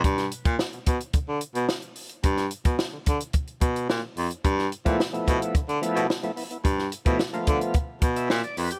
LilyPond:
<<
  \new Staff \with { instrumentName = "Tonewheel organ" } { \time 4/4 \key g \mixolydian \tempo 4 = 109 r1 | r1 | r8. <f a b e'>16 r16 <f a b e'>8. r8 <f a b e'>8 r16 <f a b e'>16 <b e'>16 <b e'>16 | r8. <f a b e'>16 r16 <f a bes b f'>8. r8. e''8 d''16 b'16 g'16 | }
  \new Staff \with { instrumentName = "Baritone saxophone" } { \clef bass \time 4/4 \key g \mixolydian g,8 r16 bes,16 r16 b,16 b,16 r16 d16 d16 r16 b,16 r4 | g,8 r16 b,16 r16 d16 d16 r8. b,8 bes,16 r16 f,16 r16 | g,8 r16 bes,16 r16 b,16 b,16 r16 d16 d16 r16 b,16 r4 | g,8 r16 b,16 r16 d16 d16 r8. b,8 bes,16 r16 f,16 r16 | }
  \new DrumStaff \with { instrumentName = "Drums" } \drummode { \time 4/4 <hh bd>16 <hh sn>16 hh16 <hh bd>16 sn16 hh16 <hh bd>16 hh16 <hh bd>8 hh16 hh16 sn16 hh16 hho16 hh16 | <hh bd>16 <hh sn>16 hh16 <hh bd>16 sn8 <hh bd>16 hh16 <hh bd>16 hh16 <hh bd>16 hh16 sn8 hho16 hh16 | <hh bd>16 sn16 hh16 <hh bd>16 sn16 hh16 <hh bd>16 hh16 <hh bd>16 hh16 hh16 hh16 sn16 hh16 hho16 hh16 | <hh bd>16 sn16 hh16 <hh bd>16 sn16 hh16 <hh bd>16 hh16 <hh bd>8 <hh bd>16 hh16 sn16 hh16 hho16 hh16 | }
>>